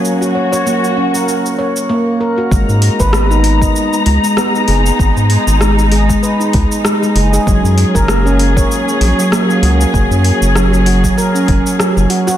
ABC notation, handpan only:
X:1
M:4/4
L:1/16
Q:"Swing 16ths" 1/4=97
K:F#
V:1 name="Handpan"
z F c c A, z C A3 c z A, z A F | G, z2 B B, D z d z2 G, G, B, z G2- | G2 z2 G, z G G, B D G, z G, G, G G | F, z2 A A, C z c z2 F, F, A, z F2- |
F2 z2 F, z F F, A C F, z F, F, F F |]